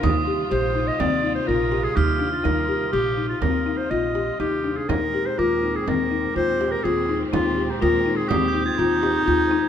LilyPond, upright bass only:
\new Staff \with { instrumentName = "Upright bass" } { \clef bass \time 5/4 \key ees \major \tempo 4 = 124 ees,4 bes,,4 ees,4 bes,,4 ees,4 | ees,4 bes,,4 ees,4 bes,,4 ees,4 | ees,4 ees,4 ees,4 ees,4 ees,4 | ees,4 ees,4 ees,4 ees,4 ees,4 | }